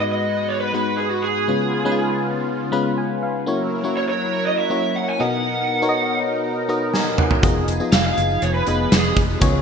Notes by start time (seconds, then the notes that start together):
Already playing: G#2 G#3 B3 D#4 F#4 B4
0.00 D#5
0.12 D#5
0.48 C#5
0.60 B4
0.73 G#3 B3 D#4 F#4 B4
0.97 G#4
1.09 F#4
1.22 G#4
1.48 C#3 G#3 B3 C#4 F4 B4
1.85 G#3 B3 C#4 D#4 B4
1.92 F4
2.72 G#3 B3 C#4 F4 B4 B5
2.98 G#5
3.23 F5
3.46 F#3 A#3 C#4 E4 F#4 A#4 C#5
3.84 A#3 C#4 E4 F#4 C#5
3.97 C#5
4.09 C#5
4.47 D#5
4.59 E5
4.70 A#3 C#4 E4 F#4 C#5
4.96 F#5
5.09 G#5
5.19 B2 B3 D#4 F#4 A#4 D#5 F#5
5.82 B3 D#4 F#4 A#4 C#5
5.89 D#5
6.69 B3 D#4 F#4 A#4 D#5 A#5
6.94 G#5, snare
7.18 F#5, mid tom
7.31 floor tom
7.43 F1 F3 B3 D#4 F4 G#4 D#5, kick, closed hi-hat, tambourine
7.68 closed hi-hat, tambourine
7.80 B3 D#4 F4 G#4 D#5, tambourine
7.92 F1 F5, snare, closed hi-hat, tambourine
8.05 F5
8.18 F#1, closed hi-hat, tambourine
8.30 tambourine
8.42 F1 C#5, closed hi-hat, tambourine
8.54 B4
8.67 F1 B3 D#4 F4 G#4 D#5, closed hi-hat, tambourine
8.92 F1 G#4, snare, closed hi-hat, tambourine
9.17 F1, kick, closed hi-hat, tambourine
9.30 tambourine
9.40 C#2 C#3 B3 C#4 F4 G#4 C#5 F5, kick, closed hi-hat, tambourine